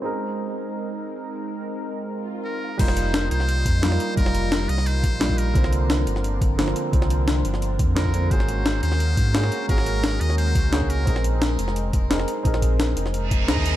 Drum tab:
CC |----------------|----------------|x---------------|----------------|
HH |----------------|----------------|x-x-x-x-x-x-x-x-|x-x-x-x-x-x-x-x-|
SD |----------------|----------------|-o--o--o----oo--|-o--o--o----o---|
BD |----------------|----------------|o---------o-----|o---------o--o--|

CC |----------------|----------------|----------------|----------------|
HH |x-x-x-x-x-x-x-x-|x-x-x-x-x-x-x-x-|x-x-x-x-x-x-x-x-|x-x-x-x-x-x-x-x-|
SD |-o--o--o----oo--|-o--o--o----o---|-o--o--o----oo--|-o--o--o----o---|
BD |o---------o-----|o---------o--o--|o---------o-----|o---------o--o--|

CC |----------------|----------------|
HH |x-x-x-x-x-x-x-x-|x-x-x-x-x-x-x-x-|
SD |-o--o--o----oo--|-o--o--o----o---|
BD |o---------o-----|o-o-------o--o--|